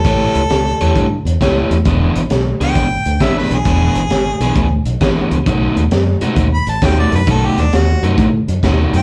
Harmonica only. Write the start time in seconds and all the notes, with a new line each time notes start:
Already playing: A4
2.63 G5
3.23 E5
3.38 B4
3.54 G#4
6.54 B5
6.69 A5
6.85 G5
7.00 D5
7.16 B4
7.31 A4
7.46 G4
7.61 D4
7.75 F#4
8.97 G5